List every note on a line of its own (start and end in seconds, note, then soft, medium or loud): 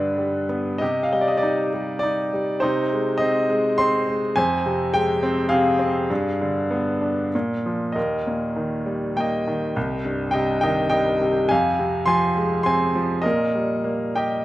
0.00 0.76 G2 medium
0.00 0.78 D3 soft
0.00 0.46 D4 soft
0.00 0.46 B4 medium
0.18 0.79 G3 soft
0.49 0.80 B3 soft
0.78 2.59 C3 medium
0.78 1.69 G4 soft
0.78 1.03 D#5 medium
1.03 1.14 F5 medium
1.13 1.72 G3 soft
1.13 1.23 D#5 medium
1.21 1.32 D5 medium
1.28 1.40 D#5 medium
1.37 1.96 D5 medium
1.43 2.02 D#4 soft
1.74 2.32 G3 soft
1.99 2.61 D#4 soft
1.99 2.57 D5 medium
2.33 2.62 G3 soft
2.60 4.33 C3 medium
2.60 3.45 D#4 medium
2.60 3.21 C5 medium
2.92 3.48 G#3 medium
3.18 3.77 C4 soft
3.18 3.73 D#5 medium
3.50 4.05 G#3 medium
3.78 4.35 C4 medium
3.78 4.19 C6 loud
4.07 4.35 G#3 medium
4.36 6.06 F2 medium
4.36 5.19 C5 medium
4.36 4.95 G#5 medium
4.66 5.50 C3 medium
4.94 6.06 G#3 medium
4.94 5.47 G5 medium
5.23 5.77 C4 medium
5.49 6.09 C3 medium
5.49 7.29 G#4 medium
5.49 7.28 F5 medium
5.79 6.09 C4 medium
6.10 7.30 G2 medium
6.41 7.31 D3 medium
6.71 7.32 B3 medium
7.01 7.33 D4 medium
7.35 7.96 A#2 medium
7.66 7.96 F3 soft
7.92 9.72 D#2 soft
7.92 9.13 A#4 soft
7.92 9.12 D#5 medium
8.27 9.44 A#2 soft
8.56 9.46 D#3 soft
8.86 9.73 G3 soft
9.16 9.74 A#3 soft
9.16 10.29 G5 medium
9.20 10.31 D#5 medium
9.47 9.75 D#3 soft
9.76 11.46 C2 medium
10.05 11.17 G2 soft
10.31 11.20 C3 soft
10.31 10.60 D#5 medium
10.31 10.59 G5 medium
10.61 11.48 D#3 medium
10.61 10.89 D#5 medium
10.61 10.88 G5 medium
10.90 11.49 G3 soft
10.90 11.46 D#5 medium
10.90 11.51 G5 medium
11.22 11.49 C3 soft
11.49 13.21 F2 medium
11.49 12.04 F5 medium
11.49 12.06 G#5 medium
11.79 12.92 C3 medium
12.06 12.94 F3 medium
12.06 12.61 G#5 medium
12.06 12.60 C6 medium
12.37 13.22 G#3 medium
12.63 13.23 C4 medium
12.63 13.21 G#5 medium
12.63 13.26 C6 medium
12.95 13.24 F3 soft
13.22 14.45 A#2 medium
13.22 14.12 A#4 medium
13.22 14.11 D#5 medium
13.55 14.45 G3 soft
13.84 14.45 A#3 soft
14.16 14.45 G4 soft
14.16 14.45 D#5 soft
14.16 14.45 G5 medium